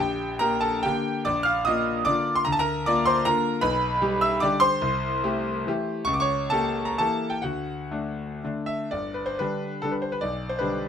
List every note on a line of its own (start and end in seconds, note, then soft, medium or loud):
0.00 0.40 A#1 medium
0.00 0.37 G4 medium
0.00 0.40 G5 medium
0.39 0.80 A#3 medium
0.39 0.80 G4 medium
0.39 0.61 A#4 medium
0.39 0.62 A#5 loud
0.61 0.82 A4 medium
0.61 0.83 A5 medium
0.83 1.22 D3 medium
0.83 1.22 A#3 medium
0.83 1.23 G4 medium
0.83 1.25 G5 loud
1.25 1.65 A#1 medium
1.25 1.44 D5 medium
1.25 1.45 D6 loud
1.43 1.64 F5 medium
1.43 1.65 F6 loud
1.65 2.03 A#3 medium
1.65 2.03 F4 medium
1.65 2.03 D#5 medium
1.65 2.05 D#6 loud
2.05 2.41 D3 medium
2.05 2.42 A#3 medium
2.05 2.42 F4 medium
2.05 2.33 D5 medium
2.05 2.34 D6 loud
2.35 2.45 C6 medium
2.45 2.85 D2 medium
2.45 2.51 A#5 loud
2.52 2.58 A5 medium
2.59 2.85 A#4 medium
2.59 2.86 A#5 loud
2.86 3.22 A#3 medium
2.86 3.22 F4 medium
2.86 3.05 D5 medium
2.86 3.06 D6 loud
3.06 3.24 C5 medium
3.06 3.25 C6 loud
3.25 3.60 D3 medium
3.25 3.60 A#3 medium
3.25 3.60 F4 medium
3.25 3.60 A#4 medium
3.25 3.62 A#5 loud
3.61 4.01 B1 medium
3.61 4.18 B4 medium
3.61 4.22 B5 loud
4.02 4.38 G3 medium
4.02 4.38 G4 medium
4.21 4.40 E5 medium
4.21 4.41 E6 loud
4.40 4.77 D3 medium
4.40 4.77 G3 medium
4.40 4.78 G4 medium
4.40 4.60 D5 medium
4.40 4.60 D6 loud
4.60 6.03 C5 loud
4.60 6.06 C6 loud
4.82 5.22 C2 medium
5.24 5.62 A3 medium
5.24 5.62 G4 medium
5.67 6.03 E3 medium
5.67 6.03 A3 medium
5.67 6.04 G4 medium
6.05 6.49 C#2 medium
6.05 6.12 C#6 loud
6.14 6.20 D6 medium
6.20 6.49 C#5 medium
6.20 6.50 C#6 loud
6.50 6.95 A#3 medium
6.50 6.95 G4 medium
6.50 6.84 A4 medium
6.50 6.86 A5 loud
6.85 6.97 A#5 medium
6.98 7.40 E3 soft
6.98 7.40 A#3 soft
6.98 7.40 G4 medium
6.98 7.30 A4 medium
6.98 7.32 A5 medium
7.30 7.42 G5 medium
7.42 7.90 D2 medium
7.42 8.38 F#4 medium
7.42 8.41 F#5 medium
7.91 8.37 A3 soft
7.91 8.37 D4 medium
8.44 8.87 D3 soft
8.44 8.87 A3 soft
8.44 8.87 D4 soft
8.66 8.90 E5 medium
8.91 9.36 G1 soft
8.91 9.13 D5 medium
9.14 9.25 B4 medium
9.26 9.37 C5 medium
9.39 9.78 D3 soft
9.39 9.79 G3 soft
9.39 9.79 D4 soft
9.39 9.82 B4 medium
9.82 10.18 D3 soft
9.82 10.18 G3 soft
9.82 10.19 D4 soft
9.82 9.91 A4 medium
9.92 10.01 B4 medium
10.02 10.11 C5 medium
10.12 10.21 B4 medium
10.21 10.62 B1 medium
10.21 10.51 D5 medium
10.49 10.61 C5 medium
10.59 10.88 D3 soft
10.59 10.88 G3 soft
10.59 10.88 D4 medium
10.59 10.88 B4 medium